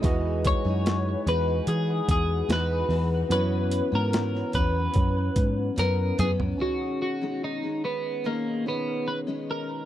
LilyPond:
<<
  \new Staff \with { instrumentName = "Flute section" } { \time 4/4 \key b \major \tempo 4 = 73 << { <fis'' gis''>1~ | <fis'' gis''>1 | r1 | } \\ { b'1 | cis''1 | r1 | } >> }
  \new Staff \with { instrumentName = "Clean electric guitar" } { \time 4/4 \key b \major r8 cis''4 b'8 gis'8 gis'8 b'8. r16 | b'8. ais'8. b'4. ais'8 gis'8 | fis'8 fis'8 dis'8 b8 ais8 b8 b'8 ais'8 | }
  \new Staff \with { instrumentName = "Tine electric piano" } { \time 4/4 \key b \major <gis e' fis' dis''>1 | <b e' fis' cis''>1 | <cis' dis' gis' cis''>2~ <cis' dis' gis' cis''>8 <b dis' gis' cis''>4. | }
  \new Staff \with { instrumentName = "Steel-string acoustic guitar" } { \clef bass \time 4/4 \key b \major <e gis dis' fis'>8. <gis dis' fis'>8. <e gis dis' fis'>4. <e gis dis' fis'>8 <e gis dis' fis'>8 | <fis, e b cis'>8. <e b cis'>8. <fis, e b cis'>4. <fis, e b cis'>8 <fis, e b cis'>8 | <b, dis gis cis'>8. <b, dis gis cis'>8 <dis gis cis'>8. <b, dis gis cis'>8 <b, dis gis cis'>8. <b, dis gis cis'>8. | }
  \new Staff \with { instrumentName = "Picked electric bass" } { \clef bass \time 4/4 \key b \major e,8. fis,8. e,8 e8 e,8 e,8 e,8 | fis,8. gis,8. e,8 fis,8 gis,8 fis,8 fis,8 | r1 | }
  \new DrumStaff \with { instrumentName = "Drums" } \drummode { \time 4/4 <hh bd>8 <hh bd>8 <hh sn>8 hh8 hh8 <hh bd>8 <hh sn>8 hho8 | hh8 hh8 <hh sn>16 sn16 <hh bd>8 <hh bd>8 <hh bd>8 <hh sn>8 <hh toml>16 tomfh16 | r4 r4 r4 r4 | }
>>